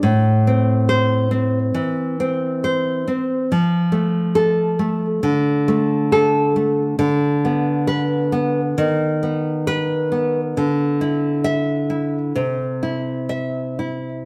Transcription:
\new Staff \with { instrumentName = "Nylon-string guitar" } { \time 4/4 \key a \minor \tempo 4 = 68 << { r4 c''4 r2 | r4 a'4 r4 a'4 | r4 b'4 r4 b'4 | r4 e''4 r4 e''4 | } \\ { a,8 c'4 c'8 e8 c'8 c''8 c'8 | f8 a4 a8 d8 a4 a8 | d8 b4 b8 dis8 b4 b8 | d8 e'4 e'8 c8 e'4 e'8 | } >> }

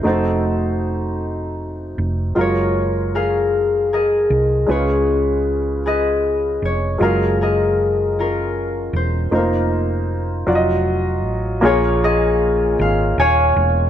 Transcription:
<<
  \new Staff \with { instrumentName = "Harp" } { \time 6/8 \key bes \minor \tempo 4. = 52 << { a'2~ a'8 r8 | des''4 f''4 ees''4 | des''4. ees''4 des''8 | f''8 ees''4 bes'4 c''8 |
bes'2~ bes'8 r8 | des''8 ees''4 f''8 aes''4 | } \\ { <c' ees'>2~ <c' ees'>8 r8 | <f' bes'>4 <aes' bes'>4 <aes' bes'>4 | <f' aes'>4. <aes' ces''>4. | <aes' bes'>8 <aes' bes'>4 <des' f'>4. |
ees'2~ ees'8 r8 | <f' aes'>8 aes'4. <des'' f''>4 | } >> }
  \new Staff \with { instrumentName = "Upright piano" } { \time 6/8 \key bes \minor <a ees' ges' c''>2. | <ges aes f' bes'>2. | <aes des' f' ces''>2. | <ges aes f' bes'>2. |
<a bes ees' f' c''>4. <ges f' ges' d'' ees''>4. | <bes f' aes' des''>2. | }
  \new Staff \with { instrumentName = "Upright piano" } { \clef bass \time 6/8 \key bes \minor r2. | r2. | des4. r4. | r2. |
r2. | bes,4. r4. | }
  \new Staff \with { instrumentName = "Fingered electric bass" } { \clef bass \time 6/8 \key bes \minor f,,2~ f,,8 f,,8 | ges,,2~ ges,,8 c,8 | des,2~ des,8 f,,8 | ges,,2~ ges,,8 e,,8 |
f,,4. f,,4 a,,8 | bes,,4. aes,,8 ees,,8 e,,8 | }
>>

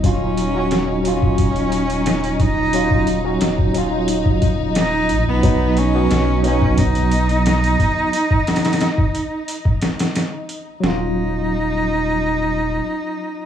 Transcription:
<<
  \new Staff \with { instrumentName = "String section" } { \time 4/4 \key ees \minor \tempo 4 = 89 ees'1~ | ees'1~ | ees'1~ | ees'1 |
r1 | }
  \new Staff \with { instrumentName = "Cello" } { \time 4/4 \key ees \minor des'4. des'2 ees'8~ | ees'4 r2 ees'8. ces'16~ | ces'8 des'4 des'8 dis'2~ | dis'2. r4 |
ees'1 | }
  \new Staff \with { instrumentName = "Tine electric piano" } { \time 4/4 \key ees \minor <ges des' f'>8. <ges des' ges'>16 r8 <ges des' f'>2~ <ges des' f'>8 | <ges des' f'>8. <ges des' ges'>16 r8 <ges des' f'>2~ <ges des' f'>8 | <fis b dis'>8. <fis b fis'>16 r8 <fis b dis'>2~ <fis b dis'>8 | r1 |
<ges des' f'>1 | }
  \new Staff \with { instrumentName = "Sub bass" } { \clef bass \time 4/4 \key ees \minor ees,,1~ | ees,,4 ees,,2~ ees,,8 bes,,16 ces,16~ | ces,4 b,,2~ b,,8 r8 | r1 |
ees,,2. r4 | }
  \new DrumStaff \with { instrumentName = "Drums" } \drummode { \time 4/4 <hh bd>8 hh8 <hh sn>8 hh16 bd16 <hh bd>16 hh16 hh16 hh16 <hh sn>16 hh16 <hh bd>8 | hh16 bd16 hh8 <hh sn>16 bd16 hh8 hh16 bd16 <hh bd>8 <hh sn>8 hh8 | <hh bd>8 hh8 <hh sn>8 hh16 bd16 <hh bd>16 hh16 hh16 hh16 <hh sn>16 hh16 <hh bd>8 | hh16 bd16 <hh sn>32 <hh sn>32 <hh sn>32 <hh sn>32 <hh sn>16 bd16 hh8 hh16 bd16 <hh sn>16 <hh sn>16 <hh sn>8 hh8 |
sn4 r4 r4 r4 | }
>>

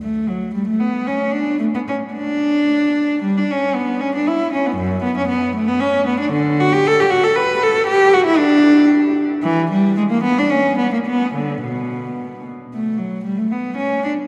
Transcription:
\new Staff \with { instrumentName = "Cello" } { \time 3/4 \key d \major \tempo 4 = 114 a8 fis8 g16 a16 b8 cis'8 d'8 | a16 b16 cis'8 d'2 | g16 d'16 cis'8 b8 cis'16 d'16 e'8 cis'16 b16 | fis,8 b16 cis'16 b8 a16 b16 cis'8 b16 d'16 |
\key b \minor d8 fis'16 g'16 a'16 g'16 fis'16 a'16 b'8 a'8 | g'8 fis'16 e'16 d'4. r8 | e8 g8 gis16 ais16 b16 d'16 cis'8 b16 ais16 | b8 d8 b,4. r8 |
\key a \mixolydian a8 fis8 g16 a16 b8 cis'8 d'8 | }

